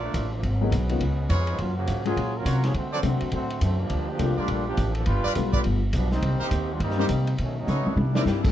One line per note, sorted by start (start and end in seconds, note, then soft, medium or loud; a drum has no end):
0.00 0.13 A#1 medium
0.00 0.30 A3 medium
0.00 0.30 D4 medium
0.00 0.28 F4 medium
0.00 0.30 F4 medium
0.00 0.28 A4 medium
0.00 0.28 A#4 medium
0.00 0.28 D5 medium
0.04 0.30 A#3 medium
0.14 0.42 A1 medium
0.14 kick soft
0.14 hi-hat pedal medium
0.14 ride medium
0.32 0.43 F3 medium
0.32 0.43 A3 medium
0.32 0.43 A#3 medium
0.32 0.43 D4 medium
0.43 0.71 G#1 medium
0.43 0.98 F#3 medium
0.43 1.45 G#3 medium
0.43 1.45 B3 medium
0.43 1.44 C#4 medium
0.43 kick soft
0.43 ride medium
0.61 0.71 F#3 medium
0.61 0.71 A#3 medium
0.61 0.71 B3 medium
0.61 0.71 D#4 medium
0.61 0.72 G#4 medium
0.72 1.00 B1 loud
0.72 kick soft
0.72 hi-hat pedal medium
0.72 ride medium
0.89 0.99 D#3 medium
0.89 1.00 G#3 medium
0.89 1.00 B3 medium
0.89 1.00 C#4 medium
0.89 1.01 F4 medium
0.89 ride soft
1.01 1.29 C#2 medium
1.01 kick soft
1.01 ride medium
1.29 1.58 F2 medium
1.29 1.59 F4 medium
1.29 1.59 G#4 medium
1.29 1.59 B4 medium
1.29 1.59 C#5 loud
1.29 kick soft
1.29 hi-hat pedal medium
1.29 ride medium
1.47 1.59 F3 medium
1.47 1.60 G#3 medium
1.47 1.60 B3 medium
1.47 1.59 D#4 medium
1.47 ride soft
1.58 1.87 F#2 medium
1.58 1.76 F#3 medium
1.58 1.76 A#3 medium
1.58 1.76 C#4 medium
1.58 1.76 F4 loud
1.58 kick soft
1.58 ride medium
1.77 2.04 C#3 medium
1.77 2.04 F3 medium
1.77 2.04 A#3 medium
1.77 2.04 F#4 medium
1.87 2.16 G#2 medium
1.87 kick soft
1.87 hi-hat pedal medium
1.87 ride medium
2.05 2.15 F#3 medium
2.05 2.33 F#3 medium
2.05 2.16 G#3 medium
2.05 2.16 A#3 medium
2.05 2.33 C#4 medium
2.05 2.17 C#4 medium
2.05 2.33 F4 medium
2.05 2.16 F4 medium
2.05 2.34 G#4 loud
2.05 ride soft
2.17 2.45 A#2 medium
2.17 kick soft
2.17 ride medium
2.36 2.64 F#3 medium
2.36 2.63 C#4 medium
2.36 2.65 F4 medium
2.36 2.64 A#4 loud
2.45 2.74 C3 medium
2.45 2.75 F4 medium
2.45 2.74 F#4 medium
2.45 2.75 A#4 medium
2.45 2.75 C#5 medium
2.45 kick soft
2.45 hi-hat pedal medium
2.45 ride medium
2.64 2.75 F3 medium
2.64 2.76 A#3 medium
2.64 2.75 C#4 medium
2.64 2.75 G#4 medium
2.64 snare soft
2.64 ride soft
2.74 3.02 D3 medium
2.74 2.91 D3 medium
2.74 2.91 A3 medium
2.74 2.91 C4 medium
2.74 2.92 F#4 medium
2.74 kick soft
2.74 ride medium
2.92 2.98 F#3 medium
2.92 2.98 C4 medium
2.92 2.98 D4 medium
2.92 3.00 F#4 loud
2.92 3.00 A4 medium
2.92 2.97 A4 medium
2.92 3.00 C5 medium
2.92 2.99 D5 loud
3.03 3.20 C3 medium
3.03 3.31 D3 medium
3.03 3.47 F#3 medium
3.03 3.47 A3 soft
3.03 3.31 A3 medium
3.03 3.31 C4 medium
3.03 3.48 C4 medium
3.03 3.48 D4 soft
3.03 3.31 F#4 medium
3.03 3.48 F#4 medium
3.03 kick soft
3.03 hi-hat pedal medium
3.03 ride medium
3.21 muted upright bass stroke soft
3.21 ride soft
3.32 3.61 A2 medium
3.32 3.60 D3 medium
3.32 3.60 A3 medium
3.32 3.59 C4 medium
3.32 3.60 F#4 loud
3.32 kick soft
3.32 ride medium
3.50 ride soft
3.61 3.90 F#2 loud
3.61 3.80 D3 medium
3.61 3.79 F#3 medium
3.61 3.79 A3 medium
3.61 3.79 C4 medium
3.61 kick soft
3.61 hi-hat pedal medium
3.61 ride medium
3.79 4.08 F3 medium
3.79 4.09 G3 medium
3.79 4.08 A#3 medium
3.79 4.08 D4 medium
3.90 4.19 D2 medium
3.90 kick soft
3.90 ride medium
4.09 4.38 F3 medium
4.09 4.37 A#3 medium
4.09 4.37 D4 medium
4.09 4.38 G4 loud
4.19 4.36 C2 medium
4.19 4.63 G3 medium
4.19 4.63 A3 medium
4.19 4.64 A#3 medium
4.19 4.64 D4 medium
4.19 4.64 F4 medium
4.19 kick soft
4.19 hi-hat pedal medium
4.19 ride medium
4.37 4.67 G3 medium
4.37 4.66 A#3 medium
4.37 4.67 D4 medium
4.37 4.75 F4 medium
4.37 4.67 F4 medium
4.37 4.75 G4 medium
4.37 4.75 A#4 medium
4.37 4.75 D5 medium
4.37 muted upright bass stroke soft
4.48 4.77 A#1 medium
4.48 kick soft
4.48 ride medium
4.67 4.94 F3 medium
4.67 4.94 A#3 medium
4.67 4.94 D4 medium
4.67 4.94 G4 loud
4.77 5.06 A1 medium
4.77 kick soft
4.77 hi-hat pedal medium
4.77 ride medium
4.95 5.07 F3 medium
4.95 5.07 A#3 medium
4.95 5.05 D4 medium
4.95 5.07 A4 loud
4.95 ride soft
5.06 5.23 G1 medium
5.06 5.63 G3 medium
5.06 5.63 D4 medium
5.06 5.63 F4 medium
5.06 5.63 B4 loud
5.06 kick soft
5.06 ride medium
5.25 5.32 F4 loud
5.25 5.32 G4 medium
5.25 5.32 B4 medium
5.25 5.32 D5 loud
5.25 muted upright bass stroke soft
5.35 5.64 B1 medium
5.35 5.79 G3 medium
5.35 5.79 A3 soft
5.35 5.79 B3 medium
5.35 5.80 D4 soft
5.35 5.80 F4 medium
5.35 kick soft
5.35 hi-hat pedal medium
5.35 ride medium
5.53 5.61 F4 medium
5.53 5.61 G4 medium
5.53 5.61 B4 medium
5.53 5.61 D5 loud
5.53 kick medium
5.64 5.93 G1 medium
5.64 kick soft
5.64 ride medium
5.93 6.22 B1 medium
5.93 6.11 F3 medium
5.93 6.11 G3 medium
5.93 6.11 B3 medium
5.93 6.11 D4 medium
5.93 kick soft
5.93 hi-hat pedal medium
5.93 ride medium
6.12 6.39 G3 medium
6.12 6.39 A#3 medium
6.12 6.39 C4 medium
6.12 6.39 D#4 loud
6.12 snare soft
6.22 6.39 C2 medium
6.22 kick soft
6.22 ride medium
6.40 6.72 D#3 medium
6.40 6.72 A#3 loud
6.40 6.72 C4 medium
6.40 6.48 D#4 medium
6.40 6.48 G4 medium
6.40 6.72 G4 loud
6.40 6.48 A#4 medium
6.40 6.48 C5 loud
6.51 6.79 D#2 loud
6.51 kick soft
6.51 hi-hat pedal medium
6.51 ride medium
6.73 6.82 G3 medium
6.73 6.81 A#3 medium
6.73 6.82 D4 medium
6.73 6.82 F4 medium
6.80 7.08 G2 medium
6.80 7.36 G3 medium
6.80 7.35 A#3 medium
6.80 7.36 C4 medium
6.80 7.35 D#4 loud
6.80 kick soft
6.80 ride medium
6.90 snare soft
6.97 7.08 G3 medium
6.97 7.08 A#3 medium
6.97 7.08 C4 medium
6.97 7.09 D4 medium
6.97 7.06 D#4 medium
6.97 7.09 D#4 medium
6.97 7.06 G4 medium
6.97 7.06 A#4 medium
6.97 7.06 C5 loud
6.97 snare soft
7.09 7.38 C3 loud
7.09 kick soft
7.09 hi-hat pedal medium
7.09 ride medium
7.27 ride medium
7.38 7.67 B2 medium
7.38 7.58 D#3 medium
7.38 7.57 F#3 medium
7.38 7.57 A3 medium
7.38 7.58 C#4 medium
7.38 kick soft
7.38 ride medium
7.59 7.86 F#3 medium
7.59 7.86 A3 medium
7.59 7.86 C#4 medium
7.59 7.86 D#4 medium
7.67 7.84 C#3 medium
7.67 7.97 D#4 medium
7.67 7.97 A4 medium
7.67 7.97 B4 medium
7.67 7.97 C#5 loud
7.67 hi-hat pedal medium
7.67 high tom soft
7.86 8.44 G3 medium
7.86 8.44 A#3 medium
7.86 8.44 D4 medium
7.86 8.45 E4 medium
7.86 muted upright bass stroke soft
7.86 high tom medium
7.96 8.24 C3 medium
7.96 high tom medium
8.13 8.41 G3 medium
8.13 8.42 A#3 medium
8.13 8.41 C4 medium
8.13 8.42 D4 medium
8.13 8.23 E4 medium
8.13 8.43 E4 medium
8.13 8.22 A#4 medium
8.13 8.22 C5 medium
8.13 8.22 D5 loud
8.13 snare medium
8.26 8.52 G2 medium
8.26 8.39 E3 medium
8.26 8.39 A#3 medium
8.26 8.39 D4 medium
8.26 8.39 G4 medium
8.26 snare medium
8.26 hi-hat pedal medium
8.42 8.52 G3 medium
8.42 8.52 A3 medium
8.42 8.52 C4 medium
8.42 8.45 A4 medium
8.42 kick medium
8.42 crash medium
8.47 8.52 G3 medium
8.47 8.52 D4 medium
8.47 8.52 E4 medium
8.47 8.52 G4 medium
8.47 8.52 A#4 medium